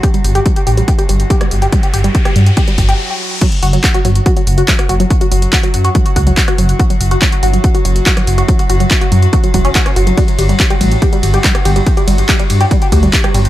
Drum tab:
CC |----------------|----------------|x---------------|----------------|
RD |----------------|----------------|----------------|----------------|
HH |xxoxxxoxxxoxxxox|xxoxxxoxxxox----|xxoxxxoxxxoxxxox|xxoxxxoxxxoxxxox|
CP |----------------|----------------|----x-------x---|----x-------x---|
SD |-------------r--|-----r----------|-------------r--|-------------r--|
BD |o---o---o---o---|o---o---o-o-----|o---o---o---o---|o---o---o-o-o---|

CC |----------------|----------------|----------------|----------------|
RD |----------------|----------------|x-x-x-x-x-x-x-x-|x-x-x-x-x-x-x-x-|
HH |xxoxxxoxxxoxxxox|xxoxxxoxxxoxxxox|xxoxxxoxxxoxxxox|xxoxxxoxxxoxxxox|
CP |----x-------x---|----x-------x---|----x-------x---|----x-------x---|
SD |-------------r--|-------------r--|-------------r--|-------------r--|
BD |o---o---o---o---|o---o---o-o-o---|o---o---o---o---|o---o---o-o-o---|